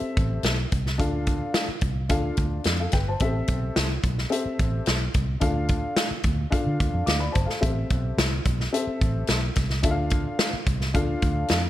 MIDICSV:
0, 0, Header, 1, 5, 480
1, 0, Start_track
1, 0, Key_signature, 0, "minor"
1, 0, Tempo, 552995
1, 860, Time_signature, 4, 2, 24, 8
1, 10154, End_track
2, 0, Start_track
2, 0, Title_t, "Upright piano"
2, 0, Program_c, 0, 0
2, 0, Note_on_c, 0, 60, 72
2, 0, Note_on_c, 0, 67, 60
2, 0, Note_on_c, 0, 69, 61
2, 0, Note_on_c, 0, 76, 82
2, 449, Note_off_c, 0, 60, 0
2, 449, Note_off_c, 0, 67, 0
2, 450, Note_off_c, 0, 69, 0
2, 454, Note_off_c, 0, 76, 0
2, 852, Note_on_c, 0, 62, 75
2, 854, Note_on_c, 0, 65, 62
2, 858, Note_on_c, 0, 69, 66
2, 862, Note_on_c, 0, 77, 74
2, 1410, Note_off_c, 0, 62, 0
2, 1411, Note_off_c, 0, 65, 0
2, 1413, Note_off_c, 0, 69, 0
2, 1415, Note_off_c, 0, 77, 0
2, 1815, Note_on_c, 0, 62, 69
2, 1815, Note_on_c, 0, 65, 66
2, 1821, Note_on_c, 0, 69, 71
2, 1822, Note_on_c, 0, 77, 77
2, 2061, Note_off_c, 0, 69, 0
2, 2062, Note_off_c, 0, 77, 0
2, 2371, Note_off_c, 0, 62, 0
2, 2372, Note_off_c, 0, 65, 0
2, 2429, Note_on_c, 0, 77, 60
2, 2434, Note_on_c, 0, 69, 47
2, 2539, Note_off_c, 0, 77, 0
2, 2542, Note_off_c, 0, 69, 0
2, 2542, Note_on_c, 0, 79, 59
2, 2545, Note_on_c, 0, 71, 54
2, 2656, Note_off_c, 0, 79, 0
2, 2657, Note_off_c, 0, 71, 0
2, 2675, Note_on_c, 0, 81, 58
2, 2676, Note_on_c, 0, 72, 54
2, 2786, Note_on_c, 0, 60, 79
2, 2788, Note_on_c, 0, 67, 70
2, 2792, Note_on_c, 0, 69, 71
2, 2793, Note_on_c, 0, 76, 85
2, 2897, Note_off_c, 0, 72, 0
2, 2897, Note_off_c, 0, 81, 0
2, 3337, Note_off_c, 0, 60, 0
2, 3338, Note_off_c, 0, 67, 0
2, 3340, Note_off_c, 0, 69, 0
2, 3341, Note_off_c, 0, 76, 0
2, 3733, Note_on_c, 0, 60, 76
2, 3733, Note_on_c, 0, 67, 69
2, 3736, Note_on_c, 0, 69, 62
2, 3744, Note_on_c, 0, 76, 76
2, 4291, Note_off_c, 0, 60, 0
2, 4291, Note_off_c, 0, 67, 0
2, 4292, Note_off_c, 0, 69, 0
2, 4296, Note_off_c, 0, 76, 0
2, 4690, Note_on_c, 0, 62, 73
2, 4696, Note_on_c, 0, 65, 64
2, 4700, Note_on_c, 0, 69, 64
2, 4703, Note_on_c, 0, 77, 80
2, 5249, Note_off_c, 0, 62, 0
2, 5252, Note_off_c, 0, 65, 0
2, 5254, Note_off_c, 0, 69, 0
2, 5256, Note_off_c, 0, 77, 0
2, 5646, Note_on_c, 0, 62, 77
2, 5651, Note_on_c, 0, 65, 68
2, 5654, Note_on_c, 0, 69, 59
2, 5656, Note_on_c, 0, 77, 74
2, 6123, Note_off_c, 0, 77, 0
2, 6131, Note_on_c, 0, 86, 55
2, 6136, Note_on_c, 0, 77, 47
2, 6138, Note_off_c, 0, 69, 0
2, 6207, Note_off_c, 0, 62, 0
2, 6210, Note_off_c, 0, 65, 0
2, 6250, Note_off_c, 0, 86, 0
2, 6251, Note_on_c, 0, 83, 66
2, 6253, Note_off_c, 0, 77, 0
2, 6254, Note_on_c, 0, 74, 58
2, 6356, Note_on_c, 0, 81, 59
2, 6366, Note_on_c, 0, 72, 50
2, 6370, Note_off_c, 0, 83, 0
2, 6372, Note_off_c, 0, 74, 0
2, 6475, Note_on_c, 0, 77, 53
2, 6482, Note_off_c, 0, 81, 0
2, 6484, Note_on_c, 0, 69, 50
2, 6487, Note_off_c, 0, 72, 0
2, 6598, Note_off_c, 0, 69, 0
2, 6604, Note_on_c, 0, 60, 67
2, 6606, Note_on_c, 0, 67, 63
2, 6609, Note_on_c, 0, 76, 77
2, 6611, Note_on_c, 0, 69, 59
2, 6716, Note_off_c, 0, 77, 0
2, 7166, Note_off_c, 0, 60, 0
2, 7167, Note_off_c, 0, 67, 0
2, 7169, Note_off_c, 0, 76, 0
2, 7170, Note_off_c, 0, 69, 0
2, 7574, Note_on_c, 0, 60, 76
2, 7576, Note_on_c, 0, 67, 62
2, 7576, Note_on_c, 0, 69, 72
2, 7583, Note_on_c, 0, 76, 78
2, 8131, Note_off_c, 0, 60, 0
2, 8132, Note_off_c, 0, 67, 0
2, 8132, Note_off_c, 0, 69, 0
2, 8135, Note_off_c, 0, 76, 0
2, 8529, Note_on_c, 0, 62, 73
2, 8534, Note_on_c, 0, 65, 65
2, 8538, Note_on_c, 0, 76, 69
2, 8541, Note_on_c, 0, 69, 60
2, 8596, Note_off_c, 0, 76, 0
2, 8600, Note_on_c, 0, 77, 81
2, 9088, Note_off_c, 0, 62, 0
2, 9091, Note_off_c, 0, 65, 0
2, 9094, Note_off_c, 0, 69, 0
2, 9124, Note_off_c, 0, 77, 0
2, 9494, Note_on_c, 0, 62, 74
2, 9497, Note_on_c, 0, 65, 69
2, 9499, Note_on_c, 0, 69, 65
2, 9504, Note_on_c, 0, 77, 81
2, 10051, Note_off_c, 0, 62, 0
2, 10052, Note_off_c, 0, 65, 0
2, 10054, Note_off_c, 0, 69, 0
2, 10056, Note_off_c, 0, 77, 0
2, 10154, End_track
3, 0, Start_track
3, 0, Title_t, "Fingered electric bass"
3, 0, Program_c, 1, 33
3, 151, Note_on_c, 1, 33, 78
3, 326, Note_off_c, 1, 33, 0
3, 376, Note_on_c, 1, 35, 76
3, 556, Note_off_c, 1, 35, 0
3, 628, Note_on_c, 1, 36, 94
3, 866, Note_off_c, 1, 36, 0
3, 866, Note_on_c, 1, 38, 96
3, 1222, Note_off_c, 1, 38, 0
3, 1580, Note_on_c, 1, 36, 78
3, 1821, Note_off_c, 1, 36, 0
3, 1821, Note_on_c, 1, 38, 82
3, 2000, Note_off_c, 1, 38, 0
3, 2064, Note_on_c, 1, 38, 69
3, 2242, Note_off_c, 1, 38, 0
3, 2303, Note_on_c, 1, 41, 86
3, 2482, Note_off_c, 1, 41, 0
3, 2545, Note_on_c, 1, 31, 87
3, 2723, Note_off_c, 1, 31, 0
3, 2783, Note_on_c, 1, 33, 92
3, 2962, Note_off_c, 1, 33, 0
3, 3025, Note_on_c, 1, 35, 76
3, 3203, Note_off_c, 1, 35, 0
3, 3262, Note_on_c, 1, 36, 91
3, 3441, Note_off_c, 1, 36, 0
3, 3503, Note_on_c, 1, 35, 87
3, 3682, Note_off_c, 1, 35, 0
3, 3988, Note_on_c, 1, 33, 80
3, 4165, Note_off_c, 1, 33, 0
3, 4228, Note_on_c, 1, 35, 86
3, 4405, Note_off_c, 1, 35, 0
3, 4470, Note_on_c, 1, 36, 80
3, 4646, Note_off_c, 1, 36, 0
3, 4701, Note_on_c, 1, 38, 91
3, 5059, Note_off_c, 1, 38, 0
3, 5416, Note_on_c, 1, 38, 75
3, 5597, Note_off_c, 1, 38, 0
3, 5785, Note_on_c, 1, 50, 80
3, 5873, Note_off_c, 1, 50, 0
3, 5904, Note_on_c, 1, 38, 71
3, 5993, Note_off_c, 1, 38, 0
3, 6021, Note_on_c, 1, 41, 75
3, 6111, Note_off_c, 1, 41, 0
3, 6136, Note_on_c, 1, 38, 81
3, 6317, Note_off_c, 1, 38, 0
3, 6386, Note_on_c, 1, 31, 85
3, 6474, Note_off_c, 1, 31, 0
3, 6621, Note_on_c, 1, 33, 88
3, 6800, Note_off_c, 1, 33, 0
3, 6863, Note_on_c, 1, 35, 77
3, 7041, Note_off_c, 1, 35, 0
3, 7096, Note_on_c, 1, 36, 95
3, 7277, Note_off_c, 1, 36, 0
3, 7341, Note_on_c, 1, 35, 72
3, 7520, Note_off_c, 1, 35, 0
3, 7827, Note_on_c, 1, 33, 81
3, 8004, Note_off_c, 1, 33, 0
3, 8059, Note_on_c, 1, 35, 82
3, 8239, Note_off_c, 1, 35, 0
3, 8305, Note_on_c, 1, 36, 95
3, 8541, Note_off_c, 1, 36, 0
3, 8541, Note_on_c, 1, 38, 96
3, 8899, Note_off_c, 1, 38, 0
3, 9260, Note_on_c, 1, 36, 74
3, 9502, Note_off_c, 1, 36, 0
3, 9502, Note_on_c, 1, 38, 82
3, 9681, Note_off_c, 1, 38, 0
3, 9741, Note_on_c, 1, 38, 76
3, 9920, Note_off_c, 1, 38, 0
3, 9983, Note_on_c, 1, 41, 88
3, 10154, Note_off_c, 1, 41, 0
3, 10154, End_track
4, 0, Start_track
4, 0, Title_t, "Muted fingered electric bass strokes"
4, 11, Note_on_c, 9, 29, 39
4, 98, Note_off_c, 9, 29, 0
4, 1461, Note_on_c, 9, 29, 38
4, 1548, Note_off_c, 9, 29, 0
4, 3867, Note_on_c, 9, 29, 42
4, 3954, Note_off_c, 9, 29, 0
4, 5302, Note_on_c, 9, 29, 37
4, 5389, Note_off_c, 9, 29, 0
4, 7701, Note_on_c, 9, 29, 42
4, 7787, Note_off_c, 9, 29, 0
4, 9142, Note_on_c, 9, 29, 42
4, 9229, Note_off_c, 9, 29, 0
4, 10154, End_track
5, 0, Start_track
5, 0, Title_t, "Drums"
5, 145, Note_on_c, 9, 42, 58
5, 148, Note_on_c, 9, 36, 76
5, 232, Note_off_c, 9, 42, 0
5, 235, Note_off_c, 9, 36, 0
5, 374, Note_on_c, 9, 42, 64
5, 387, Note_on_c, 9, 38, 85
5, 461, Note_off_c, 9, 42, 0
5, 474, Note_off_c, 9, 38, 0
5, 624, Note_on_c, 9, 42, 58
5, 627, Note_on_c, 9, 36, 72
5, 711, Note_off_c, 9, 42, 0
5, 714, Note_off_c, 9, 36, 0
5, 750, Note_on_c, 9, 38, 30
5, 837, Note_off_c, 9, 38, 0
5, 864, Note_on_c, 9, 36, 94
5, 866, Note_on_c, 9, 42, 81
5, 951, Note_off_c, 9, 36, 0
5, 953, Note_off_c, 9, 42, 0
5, 1099, Note_on_c, 9, 42, 64
5, 1104, Note_on_c, 9, 36, 76
5, 1186, Note_off_c, 9, 42, 0
5, 1191, Note_off_c, 9, 36, 0
5, 1339, Note_on_c, 9, 38, 114
5, 1340, Note_on_c, 9, 42, 97
5, 1426, Note_off_c, 9, 38, 0
5, 1427, Note_off_c, 9, 42, 0
5, 1572, Note_on_c, 9, 42, 66
5, 1579, Note_on_c, 9, 36, 79
5, 1659, Note_off_c, 9, 42, 0
5, 1666, Note_off_c, 9, 36, 0
5, 1817, Note_on_c, 9, 42, 84
5, 1822, Note_on_c, 9, 36, 93
5, 1903, Note_off_c, 9, 42, 0
5, 1909, Note_off_c, 9, 36, 0
5, 2056, Note_on_c, 9, 42, 56
5, 2064, Note_on_c, 9, 36, 75
5, 2142, Note_off_c, 9, 42, 0
5, 2151, Note_off_c, 9, 36, 0
5, 2293, Note_on_c, 9, 42, 72
5, 2306, Note_on_c, 9, 38, 83
5, 2379, Note_off_c, 9, 42, 0
5, 2392, Note_off_c, 9, 38, 0
5, 2531, Note_on_c, 9, 42, 63
5, 2535, Note_on_c, 9, 38, 28
5, 2545, Note_on_c, 9, 36, 77
5, 2618, Note_off_c, 9, 42, 0
5, 2622, Note_off_c, 9, 38, 0
5, 2632, Note_off_c, 9, 36, 0
5, 2775, Note_on_c, 9, 42, 84
5, 2783, Note_on_c, 9, 36, 90
5, 2862, Note_off_c, 9, 42, 0
5, 2870, Note_off_c, 9, 36, 0
5, 3016, Note_on_c, 9, 42, 65
5, 3025, Note_on_c, 9, 36, 79
5, 3103, Note_off_c, 9, 42, 0
5, 3112, Note_off_c, 9, 36, 0
5, 3266, Note_on_c, 9, 38, 111
5, 3267, Note_on_c, 9, 42, 96
5, 3352, Note_off_c, 9, 38, 0
5, 3354, Note_off_c, 9, 42, 0
5, 3500, Note_on_c, 9, 42, 63
5, 3504, Note_on_c, 9, 36, 84
5, 3587, Note_off_c, 9, 42, 0
5, 3591, Note_off_c, 9, 36, 0
5, 3632, Note_on_c, 9, 38, 29
5, 3719, Note_off_c, 9, 38, 0
5, 3750, Note_on_c, 9, 42, 80
5, 3837, Note_off_c, 9, 42, 0
5, 3985, Note_on_c, 9, 42, 58
5, 3988, Note_on_c, 9, 36, 78
5, 4072, Note_off_c, 9, 42, 0
5, 4075, Note_off_c, 9, 36, 0
5, 4217, Note_on_c, 9, 42, 65
5, 4230, Note_on_c, 9, 38, 89
5, 4304, Note_off_c, 9, 42, 0
5, 4317, Note_off_c, 9, 38, 0
5, 4462, Note_on_c, 9, 42, 62
5, 4468, Note_on_c, 9, 36, 72
5, 4549, Note_off_c, 9, 42, 0
5, 4555, Note_off_c, 9, 36, 0
5, 4697, Note_on_c, 9, 42, 84
5, 4702, Note_on_c, 9, 36, 95
5, 4784, Note_off_c, 9, 42, 0
5, 4789, Note_off_c, 9, 36, 0
5, 4935, Note_on_c, 9, 42, 61
5, 4943, Note_on_c, 9, 36, 73
5, 5021, Note_off_c, 9, 42, 0
5, 5030, Note_off_c, 9, 36, 0
5, 5178, Note_on_c, 9, 38, 112
5, 5179, Note_on_c, 9, 42, 96
5, 5265, Note_off_c, 9, 38, 0
5, 5266, Note_off_c, 9, 42, 0
5, 5412, Note_on_c, 9, 42, 65
5, 5418, Note_on_c, 9, 36, 78
5, 5498, Note_off_c, 9, 42, 0
5, 5505, Note_off_c, 9, 36, 0
5, 5662, Note_on_c, 9, 36, 88
5, 5662, Note_on_c, 9, 42, 88
5, 5748, Note_off_c, 9, 42, 0
5, 5749, Note_off_c, 9, 36, 0
5, 5903, Note_on_c, 9, 42, 58
5, 5905, Note_on_c, 9, 36, 84
5, 5990, Note_off_c, 9, 42, 0
5, 5992, Note_off_c, 9, 36, 0
5, 6135, Note_on_c, 9, 42, 70
5, 6148, Note_on_c, 9, 38, 85
5, 6222, Note_off_c, 9, 42, 0
5, 6235, Note_off_c, 9, 38, 0
5, 6380, Note_on_c, 9, 42, 64
5, 6385, Note_on_c, 9, 36, 76
5, 6467, Note_off_c, 9, 42, 0
5, 6472, Note_off_c, 9, 36, 0
5, 6508, Note_on_c, 9, 38, 31
5, 6594, Note_off_c, 9, 38, 0
5, 6622, Note_on_c, 9, 36, 98
5, 6623, Note_on_c, 9, 42, 86
5, 6708, Note_off_c, 9, 36, 0
5, 6709, Note_off_c, 9, 42, 0
5, 6859, Note_on_c, 9, 42, 59
5, 6862, Note_on_c, 9, 36, 76
5, 6945, Note_off_c, 9, 42, 0
5, 6949, Note_off_c, 9, 36, 0
5, 7104, Note_on_c, 9, 38, 110
5, 7106, Note_on_c, 9, 42, 99
5, 7191, Note_off_c, 9, 38, 0
5, 7193, Note_off_c, 9, 42, 0
5, 7337, Note_on_c, 9, 42, 66
5, 7340, Note_on_c, 9, 36, 82
5, 7424, Note_off_c, 9, 42, 0
5, 7427, Note_off_c, 9, 36, 0
5, 7469, Note_on_c, 9, 38, 30
5, 7555, Note_off_c, 9, 38, 0
5, 7586, Note_on_c, 9, 42, 93
5, 7673, Note_off_c, 9, 42, 0
5, 7823, Note_on_c, 9, 42, 56
5, 7825, Note_on_c, 9, 36, 85
5, 7910, Note_off_c, 9, 42, 0
5, 7911, Note_off_c, 9, 36, 0
5, 8048, Note_on_c, 9, 42, 67
5, 8061, Note_on_c, 9, 38, 87
5, 8135, Note_off_c, 9, 42, 0
5, 8148, Note_off_c, 9, 38, 0
5, 8293, Note_on_c, 9, 42, 65
5, 8298, Note_on_c, 9, 38, 31
5, 8304, Note_on_c, 9, 36, 83
5, 8380, Note_off_c, 9, 42, 0
5, 8384, Note_off_c, 9, 38, 0
5, 8390, Note_off_c, 9, 36, 0
5, 8418, Note_on_c, 9, 38, 27
5, 8505, Note_off_c, 9, 38, 0
5, 8533, Note_on_c, 9, 42, 88
5, 8540, Note_on_c, 9, 36, 88
5, 8620, Note_off_c, 9, 42, 0
5, 8626, Note_off_c, 9, 36, 0
5, 8768, Note_on_c, 9, 42, 59
5, 8781, Note_on_c, 9, 36, 82
5, 8855, Note_off_c, 9, 42, 0
5, 8868, Note_off_c, 9, 36, 0
5, 9019, Note_on_c, 9, 38, 110
5, 9020, Note_on_c, 9, 42, 98
5, 9106, Note_off_c, 9, 38, 0
5, 9107, Note_off_c, 9, 42, 0
5, 9256, Note_on_c, 9, 42, 61
5, 9259, Note_on_c, 9, 36, 85
5, 9343, Note_off_c, 9, 42, 0
5, 9346, Note_off_c, 9, 36, 0
5, 9384, Note_on_c, 9, 38, 27
5, 9470, Note_off_c, 9, 38, 0
5, 9500, Note_on_c, 9, 42, 85
5, 9502, Note_on_c, 9, 36, 94
5, 9587, Note_off_c, 9, 42, 0
5, 9589, Note_off_c, 9, 36, 0
5, 9739, Note_on_c, 9, 42, 56
5, 9744, Note_on_c, 9, 36, 80
5, 9826, Note_off_c, 9, 42, 0
5, 9830, Note_off_c, 9, 36, 0
5, 9968, Note_on_c, 9, 42, 73
5, 9981, Note_on_c, 9, 38, 92
5, 10055, Note_off_c, 9, 42, 0
5, 10068, Note_off_c, 9, 38, 0
5, 10154, End_track
0, 0, End_of_file